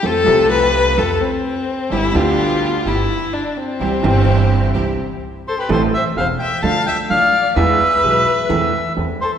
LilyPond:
<<
  \new Staff \with { instrumentName = "Bandoneon" } { \time 4/4 \key c \major \tempo 4 = 128 r1 | r1 | r2. r8 c''16 b'16 | \key a \minor c''8 e''8 f''8 g''8 a''8 g''8 f''4 |
e''2. r8 c''8 | }
  \new Staff \with { instrumentName = "Violin" } { \time 4/4 \key c \major a'4 b'4 a'8 c'4. | e'8 f'4. e'4 d'8 c'8~ | c'2. r8 a'16 g'16 | \key a \minor a'8 c''8 c''8 e''8 f''8 e''8 d''4 |
b'2. r8 a'8 | }
  \new Staff \with { instrumentName = "String section" } { \time 4/4 \key c \major <a c' f'>8 <a c' f'>4. <a c' f'>8 r4. | <b d' g'>8 <b d' g'>4. <b d' g'>8 r4. | <c' e' g'>8 <c' e' g'>4. <c' e' g'>8 r4. | \key a \minor r1 |
r1 | }
  \new Staff \with { instrumentName = "Upright piano" } { \clef bass \time 4/4 \key c \major <f, f a c' a'>8 <c, c f a c' a'>4. <f, f a c' a'>8 r4. | <g,, g, d g b g'>8 <d, d g b g'>4. <g,, g, d g b g'>8 r4. | <c, c e g c' g'>8 <g,, g, e g c' g'>4. <c, c e g c' g'>8 r4. | \key a \minor <a,, a, e a c' a'>8 r8 <e,, e, e a c' a'>8 r8 <d, d f a d' a'>8 r8 <a,, a, f a d' a'>8 r8 |
<e, e gis b gis'>8 r8 <b,, b, e gis b gis'>8 r8 <e, e a c' a'>8 r8 <e, e a c' a'>8 r8 | }
  \new Staff \with { instrumentName = "Upright bass" } { \clef bass \time 4/4 \key c \major f,8 c,4. f,8 r4. | g,,8 d,4. g,,8 r4. | c,8 g,,4. c,8 r4. | \key a \minor a,,8 r8 e,,8 r8 d,8 r8 a,,8 r8 |
e,8 r8 b,,8 r8 e,8 r8 e,8 r8 | }
>>